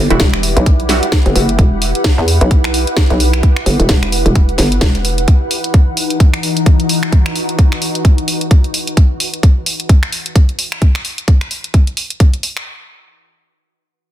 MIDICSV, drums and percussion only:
0, 0, Header, 1, 2, 480
1, 0, Start_track
1, 0, Tempo, 461538
1, 1649, Time_signature, 4, 2, 24, 8
1, 14683, End_track
2, 0, Start_track
2, 0, Title_t, "Drums"
2, 109, Note_on_c, 9, 42, 51
2, 205, Note_on_c, 9, 38, 121
2, 210, Note_off_c, 9, 42, 0
2, 210, Note_on_c, 9, 36, 119
2, 210, Note_on_c, 9, 42, 66
2, 309, Note_off_c, 9, 38, 0
2, 314, Note_off_c, 9, 36, 0
2, 314, Note_off_c, 9, 42, 0
2, 349, Note_on_c, 9, 26, 59
2, 450, Note_on_c, 9, 46, 111
2, 453, Note_off_c, 9, 26, 0
2, 554, Note_off_c, 9, 46, 0
2, 589, Note_on_c, 9, 42, 53
2, 690, Note_off_c, 9, 42, 0
2, 690, Note_on_c, 9, 36, 126
2, 690, Note_on_c, 9, 42, 64
2, 794, Note_off_c, 9, 36, 0
2, 794, Note_off_c, 9, 42, 0
2, 829, Note_on_c, 9, 42, 36
2, 925, Note_on_c, 9, 38, 60
2, 930, Note_on_c, 9, 46, 103
2, 933, Note_off_c, 9, 42, 0
2, 1029, Note_off_c, 9, 38, 0
2, 1034, Note_off_c, 9, 46, 0
2, 1069, Note_on_c, 9, 42, 51
2, 1165, Note_on_c, 9, 38, 124
2, 1170, Note_off_c, 9, 42, 0
2, 1170, Note_on_c, 9, 36, 120
2, 1170, Note_on_c, 9, 42, 66
2, 1269, Note_off_c, 9, 38, 0
2, 1274, Note_off_c, 9, 36, 0
2, 1274, Note_off_c, 9, 42, 0
2, 1309, Note_on_c, 9, 42, 37
2, 1410, Note_on_c, 9, 46, 106
2, 1413, Note_off_c, 9, 42, 0
2, 1514, Note_off_c, 9, 46, 0
2, 1550, Note_on_c, 9, 42, 52
2, 1650, Note_off_c, 9, 42, 0
2, 1650, Note_on_c, 9, 36, 118
2, 1650, Note_on_c, 9, 42, 65
2, 1754, Note_off_c, 9, 36, 0
2, 1754, Note_off_c, 9, 42, 0
2, 1890, Note_on_c, 9, 46, 106
2, 1994, Note_off_c, 9, 46, 0
2, 2029, Note_on_c, 9, 42, 50
2, 2125, Note_on_c, 9, 38, 120
2, 2130, Note_off_c, 9, 42, 0
2, 2130, Note_on_c, 9, 36, 123
2, 2130, Note_on_c, 9, 42, 62
2, 2229, Note_off_c, 9, 38, 0
2, 2234, Note_off_c, 9, 36, 0
2, 2234, Note_off_c, 9, 42, 0
2, 2370, Note_on_c, 9, 46, 112
2, 2474, Note_off_c, 9, 46, 0
2, 2509, Note_on_c, 9, 42, 49
2, 2609, Note_off_c, 9, 42, 0
2, 2609, Note_on_c, 9, 42, 62
2, 2610, Note_on_c, 9, 36, 120
2, 2713, Note_off_c, 9, 42, 0
2, 2714, Note_off_c, 9, 36, 0
2, 2749, Note_on_c, 9, 26, 61
2, 2749, Note_on_c, 9, 42, 35
2, 2850, Note_on_c, 9, 46, 106
2, 2853, Note_off_c, 9, 26, 0
2, 2853, Note_off_c, 9, 42, 0
2, 2954, Note_off_c, 9, 46, 0
2, 2989, Note_on_c, 9, 42, 50
2, 3084, Note_on_c, 9, 38, 116
2, 3089, Note_off_c, 9, 42, 0
2, 3089, Note_on_c, 9, 42, 61
2, 3090, Note_on_c, 9, 36, 121
2, 3188, Note_off_c, 9, 38, 0
2, 3193, Note_off_c, 9, 42, 0
2, 3194, Note_off_c, 9, 36, 0
2, 3228, Note_on_c, 9, 42, 36
2, 3329, Note_on_c, 9, 46, 108
2, 3332, Note_off_c, 9, 42, 0
2, 3433, Note_off_c, 9, 46, 0
2, 3468, Note_on_c, 9, 26, 77
2, 3468, Note_on_c, 9, 42, 52
2, 3569, Note_off_c, 9, 42, 0
2, 3569, Note_on_c, 9, 36, 116
2, 3569, Note_on_c, 9, 42, 60
2, 3572, Note_off_c, 9, 26, 0
2, 3673, Note_off_c, 9, 36, 0
2, 3673, Note_off_c, 9, 42, 0
2, 3708, Note_on_c, 9, 26, 79
2, 3809, Note_on_c, 9, 46, 105
2, 3812, Note_off_c, 9, 26, 0
2, 3913, Note_off_c, 9, 46, 0
2, 3948, Note_on_c, 9, 42, 49
2, 4044, Note_on_c, 9, 38, 113
2, 4049, Note_off_c, 9, 42, 0
2, 4049, Note_on_c, 9, 36, 121
2, 4049, Note_on_c, 9, 42, 62
2, 4148, Note_off_c, 9, 38, 0
2, 4153, Note_off_c, 9, 36, 0
2, 4153, Note_off_c, 9, 42, 0
2, 4188, Note_on_c, 9, 26, 58
2, 4188, Note_on_c, 9, 42, 35
2, 4289, Note_on_c, 9, 46, 112
2, 4292, Note_off_c, 9, 26, 0
2, 4292, Note_off_c, 9, 42, 0
2, 4393, Note_off_c, 9, 46, 0
2, 4428, Note_on_c, 9, 42, 47
2, 4529, Note_off_c, 9, 42, 0
2, 4529, Note_on_c, 9, 36, 120
2, 4529, Note_on_c, 9, 42, 63
2, 4633, Note_off_c, 9, 36, 0
2, 4633, Note_off_c, 9, 42, 0
2, 4668, Note_on_c, 9, 42, 34
2, 4764, Note_on_c, 9, 38, 58
2, 4769, Note_on_c, 9, 46, 104
2, 4772, Note_off_c, 9, 42, 0
2, 4868, Note_off_c, 9, 38, 0
2, 4873, Note_off_c, 9, 46, 0
2, 4908, Note_on_c, 9, 42, 48
2, 5004, Note_on_c, 9, 38, 110
2, 5009, Note_off_c, 9, 42, 0
2, 5009, Note_on_c, 9, 36, 117
2, 5009, Note_on_c, 9, 42, 60
2, 5108, Note_off_c, 9, 38, 0
2, 5113, Note_off_c, 9, 36, 0
2, 5113, Note_off_c, 9, 42, 0
2, 5148, Note_on_c, 9, 42, 34
2, 5249, Note_on_c, 9, 46, 107
2, 5252, Note_off_c, 9, 42, 0
2, 5353, Note_off_c, 9, 46, 0
2, 5388, Note_on_c, 9, 42, 49
2, 5489, Note_off_c, 9, 42, 0
2, 5489, Note_on_c, 9, 36, 112
2, 5489, Note_on_c, 9, 42, 63
2, 5593, Note_off_c, 9, 36, 0
2, 5593, Note_off_c, 9, 42, 0
2, 5729, Note_on_c, 9, 46, 98
2, 5833, Note_off_c, 9, 46, 0
2, 5868, Note_on_c, 9, 42, 48
2, 5969, Note_off_c, 9, 42, 0
2, 5969, Note_on_c, 9, 36, 115
2, 5969, Note_on_c, 9, 42, 60
2, 6073, Note_off_c, 9, 36, 0
2, 6073, Note_off_c, 9, 42, 0
2, 6209, Note_on_c, 9, 46, 106
2, 6313, Note_off_c, 9, 46, 0
2, 6348, Note_on_c, 9, 42, 48
2, 6449, Note_off_c, 9, 42, 0
2, 6449, Note_on_c, 9, 36, 116
2, 6449, Note_on_c, 9, 42, 59
2, 6553, Note_off_c, 9, 36, 0
2, 6553, Note_off_c, 9, 42, 0
2, 6589, Note_on_c, 9, 26, 63
2, 6589, Note_on_c, 9, 42, 33
2, 6690, Note_on_c, 9, 46, 96
2, 6693, Note_off_c, 9, 26, 0
2, 6693, Note_off_c, 9, 42, 0
2, 6794, Note_off_c, 9, 46, 0
2, 6829, Note_on_c, 9, 42, 48
2, 6929, Note_off_c, 9, 42, 0
2, 6929, Note_on_c, 9, 36, 115
2, 6929, Note_on_c, 9, 42, 59
2, 7033, Note_off_c, 9, 36, 0
2, 7033, Note_off_c, 9, 42, 0
2, 7069, Note_on_c, 9, 42, 35
2, 7170, Note_on_c, 9, 46, 103
2, 7173, Note_off_c, 9, 42, 0
2, 7274, Note_off_c, 9, 46, 0
2, 7309, Note_on_c, 9, 26, 81
2, 7309, Note_on_c, 9, 42, 49
2, 7409, Note_on_c, 9, 36, 108
2, 7410, Note_off_c, 9, 42, 0
2, 7410, Note_on_c, 9, 42, 62
2, 7413, Note_off_c, 9, 26, 0
2, 7513, Note_off_c, 9, 36, 0
2, 7514, Note_off_c, 9, 42, 0
2, 7549, Note_on_c, 9, 26, 83
2, 7650, Note_on_c, 9, 46, 94
2, 7653, Note_off_c, 9, 26, 0
2, 7754, Note_off_c, 9, 46, 0
2, 7789, Note_on_c, 9, 42, 48
2, 7890, Note_off_c, 9, 42, 0
2, 7890, Note_on_c, 9, 36, 111
2, 7890, Note_on_c, 9, 42, 62
2, 7994, Note_off_c, 9, 36, 0
2, 7994, Note_off_c, 9, 42, 0
2, 8029, Note_on_c, 9, 26, 64
2, 8130, Note_on_c, 9, 46, 102
2, 8133, Note_off_c, 9, 26, 0
2, 8234, Note_off_c, 9, 46, 0
2, 8270, Note_on_c, 9, 42, 50
2, 8370, Note_on_c, 9, 36, 112
2, 8371, Note_off_c, 9, 42, 0
2, 8371, Note_on_c, 9, 42, 62
2, 8474, Note_off_c, 9, 36, 0
2, 8475, Note_off_c, 9, 42, 0
2, 8509, Note_on_c, 9, 42, 35
2, 8610, Note_on_c, 9, 46, 95
2, 8613, Note_off_c, 9, 42, 0
2, 8714, Note_off_c, 9, 46, 0
2, 8749, Note_on_c, 9, 42, 50
2, 8850, Note_off_c, 9, 42, 0
2, 8850, Note_on_c, 9, 36, 111
2, 8850, Note_on_c, 9, 42, 62
2, 8954, Note_off_c, 9, 36, 0
2, 8954, Note_off_c, 9, 42, 0
2, 8989, Note_on_c, 9, 42, 35
2, 9090, Note_on_c, 9, 46, 98
2, 9093, Note_off_c, 9, 42, 0
2, 9194, Note_off_c, 9, 46, 0
2, 9229, Note_on_c, 9, 42, 49
2, 9330, Note_off_c, 9, 42, 0
2, 9330, Note_on_c, 9, 36, 105
2, 9330, Note_on_c, 9, 42, 66
2, 9434, Note_off_c, 9, 36, 0
2, 9434, Note_off_c, 9, 42, 0
2, 9570, Note_on_c, 9, 46, 96
2, 9674, Note_off_c, 9, 46, 0
2, 9709, Note_on_c, 9, 42, 51
2, 9810, Note_off_c, 9, 42, 0
2, 9810, Note_on_c, 9, 36, 108
2, 9810, Note_on_c, 9, 42, 65
2, 9914, Note_off_c, 9, 36, 0
2, 9914, Note_off_c, 9, 42, 0
2, 10050, Note_on_c, 9, 46, 100
2, 10154, Note_off_c, 9, 46, 0
2, 10189, Note_on_c, 9, 42, 50
2, 10290, Note_off_c, 9, 42, 0
2, 10290, Note_on_c, 9, 36, 111
2, 10290, Note_on_c, 9, 42, 65
2, 10394, Note_off_c, 9, 36, 0
2, 10394, Note_off_c, 9, 42, 0
2, 10429, Note_on_c, 9, 26, 65
2, 10429, Note_on_c, 9, 42, 35
2, 10530, Note_on_c, 9, 46, 92
2, 10533, Note_off_c, 9, 26, 0
2, 10533, Note_off_c, 9, 42, 0
2, 10634, Note_off_c, 9, 46, 0
2, 10669, Note_on_c, 9, 42, 52
2, 10770, Note_off_c, 9, 42, 0
2, 10770, Note_on_c, 9, 36, 107
2, 10770, Note_on_c, 9, 42, 65
2, 10874, Note_off_c, 9, 36, 0
2, 10874, Note_off_c, 9, 42, 0
2, 10909, Note_on_c, 9, 42, 36
2, 11010, Note_on_c, 9, 46, 94
2, 11013, Note_off_c, 9, 42, 0
2, 11114, Note_off_c, 9, 46, 0
2, 11149, Note_on_c, 9, 26, 83
2, 11149, Note_on_c, 9, 42, 51
2, 11249, Note_off_c, 9, 42, 0
2, 11249, Note_on_c, 9, 42, 68
2, 11250, Note_on_c, 9, 36, 110
2, 11253, Note_off_c, 9, 26, 0
2, 11353, Note_off_c, 9, 42, 0
2, 11354, Note_off_c, 9, 36, 0
2, 11389, Note_on_c, 9, 26, 86
2, 11489, Note_on_c, 9, 46, 97
2, 11493, Note_off_c, 9, 26, 0
2, 11593, Note_off_c, 9, 46, 0
2, 11628, Note_on_c, 9, 42, 52
2, 11729, Note_off_c, 9, 42, 0
2, 11729, Note_on_c, 9, 42, 67
2, 11730, Note_on_c, 9, 36, 110
2, 11833, Note_off_c, 9, 42, 0
2, 11834, Note_off_c, 9, 36, 0
2, 11869, Note_on_c, 9, 26, 59
2, 11869, Note_on_c, 9, 42, 38
2, 11969, Note_on_c, 9, 46, 101
2, 11973, Note_off_c, 9, 26, 0
2, 11973, Note_off_c, 9, 42, 0
2, 12073, Note_off_c, 9, 46, 0
2, 12108, Note_on_c, 9, 42, 51
2, 12209, Note_off_c, 9, 42, 0
2, 12209, Note_on_c, 9, 42, 64
2, 12210, Note_on_c, 9, 36, 108
2, 12313, Note_off_c, 9, 42, 0
2, 12314, Note_off_c, 9, 36, 0
2, 12348, Note_on_c, 9, 42, 37
2, 12449, Note_on_c, 9, 46, 92
2, 12452, Note_off_c, 9, 42, 0
2, 12553, Note_off_c, 9, 46, 0
2, 12588, Note_on_c, 9, 42, 51
2, 12689, Note_off_c, 9, 42, 0
2, 12689, Note_on_c, 9, 36, 106
2, 12689, Note_on_c, 9, 42, 66
2, 12793, Note_off_c, 9, 36, 0
2, 12793, Note_off_c, 9, 42, 0
2, 12829, Note_on_c, 9, 42, 37
2, 12929, Note_on_c, 9, 46, 96
2, 12933, Note_off_c, 9, 42, 0
2, 13033, Note_off_c, 9, 46, 0
2, 13069, Note_on_c, 9, 26, 82
2, 13069, Note_on_c, 9, 42, 54
2, 13173, Note_off_c, 9, 26, 0
2, 13173, Note_off_c, 9, 42, 0
2, 14683, End_track
0, 0, End_of_file